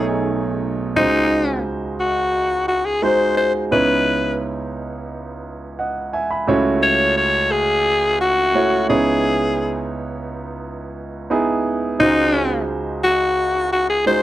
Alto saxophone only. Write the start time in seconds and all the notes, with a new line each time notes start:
Already playing: G#4
0.97 D#4
2.00 F#4
2.68 F#4
2.86 G#4
3.03 C5
3.37 C5
3.72 B4
6.83 C#5
7.17 C#5
7.52 G#4
8.21 F#4
8.90 G#4
12.00 D#4
13.03 F#4
13.73 F#4
13.90 G#4
14.07 C5